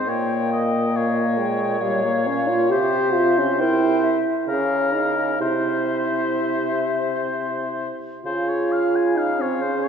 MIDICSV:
0, 0, Header, 1, 6, 480
1, 0, Start_track
1, 0, Tempo, 878477
1, 48, Time_signature, 3, 2, 24, 8
1, 2448, Tempo, 944882
1, 4368, Tempo, 913242
1, 5222, End_track
2, 0, Start_track
2, 0, Title_t, "Flute"
2, 0, Program_c, 0, 73
2, 40, Note_on_c, 0, 79, 51
2, 523, Note_on_c, 0, 77, 59
2, 532, Note_off_c, 0, 79, 0
2, 756, Note_on_c, 0, 79, 49
2, 764, Note_off_c, 0, 77, 0
2, 988, Note_on_c, 0, 77, 52
2, 996, Note_off_c, 0, 79, 0
2, 1476, Note_off_c, 0, 77, 0
2, 1479, Note_on_c, 0, 76, 59
2, 1961, Note_on_c, 0, 79, 67
2, 1970, Note_off_c, 0, 76, 0
2, 2203, Note_on_c, 0, 76, 54
2, 2211, Note_off_c, 0, 79, 0
2, 2446, Note_off_c, 0, 76, 0
2, 2450, Note_on_c, 0, 77, 52
2, 2763, Note_off_c, 0, 77, 0
2, 2917, Note_on_c, 0, 76, 55
2, 4177, Note_off_c, 0, 76, 0
2, 4360, Note_on_c, 0, 77, 56
2, 5222, Note_off_c, 0, 77, 0
2, 5222, End_track
3, 0, Start_track
3, 0, Title_t, "Oboe"
3, 0, Program_c, 1, 68
3, 0, Note_on_c, 1, 72, 47
3, 47, Note_on_c, 1, 73, 56
3, 56, Note_off_c, 1, 72, 0
3, 282, Note_off_c, 1, 73, 0
3, 286, Note_on_c, 1, 75, 43
3, 526, Note_on_c, 1, 73, 55
3, 534, Note_off_c, 1, 75, 0
3, 1480, Note_off_c, 1, 73, 0
3, 1483, Note_on_c, 1, 72, 59
3, 1957, Note_off_c, 1, 72, 0
3, 1971, Note_on_c, 1, 72, 47
3, 2294, Note_off_c, 1, 72, 0
3, 2450, Note_on_c, 1, 70, 53
3, 2898, Note_off_c, 1, 70, 0
3, 2922, Note_on_c, 1, 72, 57
3, 4180, Note_off_c, 1, 72, 0
3, 4366, Note_on_c, 1, 72, 53
3, 4488, Note_on_c, 1, 73, 46
3, 4495, Note_off_c, 1, 72, 0
3, 4611, Note_on_c, 1, 77, 43
3, 4619, Note_off_c, 1, 73, 0
3, 4735, Note_on_c, 1, 80, 45
3, 4743, Note_off_c, 1, 77, 0
3, 4852, Note_on_c, 1, 77, 45
3, 4860, Note_off_c, 1, 80, 0
3, 4973, Note_on_c, 1, 73, 45
3, 4981, Note_off_c, 1, 77, 0
3, 5082, Note_on_c, 1, 72, 50
3, 5090, Note_off_c, 1, 73, 0
3, 5199, Note_on_c, 1, 73, 50
3, 5207, Note_off_c, 1, 72, 0
3, 5222, Note_off_c, 1, 73, 0
3, 5222, End_track
4, 0, Start_track
4, 0, Title_t, "Clarinet"
4, 0, Program_c, 2, 71
4, 0, Note_on_c, 2, 75, 52
4, 986, Note_on_c, 2, 73, 59
4, 994, Note_off_c, 2, 75, 0
4, 1476, Note_off_c, 2, 73, 0
4, 1482, Note_on_c, 2, 72, 53
4, 1971, Note_on_c, 2, 70, 53
4, 1979, Note_off_c, 2, 72, 0
4, 2300, Note_off_c, 2, 70, 0
4, 2452, Note_on_c, 2, 68, 52
4, 2899, Note_off_c, 2, 68, 0
4, 2928, Note_on_c, 2, 72, 47
4, 4182, Note_off_c, 2, 72, 0
4, 4372, Note_on_c, 2, 68, 41
4, 5222, Note_off_c, 2, 68, 0
4, 5222, End_track
5, 0, Start_track
5, 0, Title_t, "French horn"
5, 0, Program_c, 3, 60
5, 42, Note_on_c, 3, 58, 57
5, 752, Note_on_c, 3, 56, 74
5, 760, Note_off_c, 3, 58, 0
5, 988, Note_off_c, 3, 56, 0
5, 991, Note_on_c, 3, 55, 68
5, 1113, Note_on_c, 3, 58, 69
5, 1121, Note_off_c, 3, 55, 0
5, 1238, Note_on_c, 3, 61, 79
5, 1246, Note_off_c, 3, 58, 0
5, 1355, Note_on_c, 3, 65, 81
5, 1363, Note_off_c, 3, 61, 0
5, 1474, Note_on_c, 3, 67, 86
5, 1482, Note_off_c, 3, 65, 0
5, 1714, Note_on_c, 3, 65, 84
5, 1722, Note_off_c, 3, 67, 0
5, 1849, Note_on_c, 3, 61, 75
5, 1857, Note_off_c, 3, 65, 0
5, 1967, Note_on_c, 3, 64, 98
5, 1975, Note_off_c, 3, 61, 0
5, 2299, Note_off_c, 3, 64, 0
5, 2447, Note_on_c, 3, 61, 72
5, 2676, Note_on_c, 3, 63, 65
5, 2683, Note_off_c, 3, 61, 0
5, 2916, Note_on_c, 3, 64, 68
5, 2923, Note_off_c, 3, 63, 0
5, 4125, Note_off_c, 3, 64, 0
5, 4360, Note_on_c, 3, 65, 71
5, 4841, Note_on_c, 3, 63, 74
5, 4849, Note_off_c, 3, 65, 0
5, 4966, Note_on_c, 3, 60, 61
5, 4974, Note_off_c, 3, 63, 0
5, 5083, Note_on_c, 3, 61, 76
5, 5091, Note_off_c, 3, 60, 0
5, 5222, Note_off_c, 3, 61, 0
5, 5222, End_track
6, 0, Start_track
6, 0, Title_t, "Bassoon"
6, 0, Program_c, 4, 70
6, 43, Note_on_c, 4, 46, 48
6, 1479, Note_on_c, 4, 48, 59
6, 1487, Note_off_c, 4, 46, 0
6, 2297, Note_off_c, 4, 48, 0
6, 2446, Note_on_c, 4, 49, 55
6, 2917, Note_on_c, 4, 48, 46
6, 2925, Note_off_c, 4, 49, 0
6, 4197, Note_off_c, 4, 48, 0
6, 4366, Note_on_c, 4, 49, 49
6, 5222, Note_off_c, 4, 49, 0
6, 5222, End_track
0, 0, End_of_file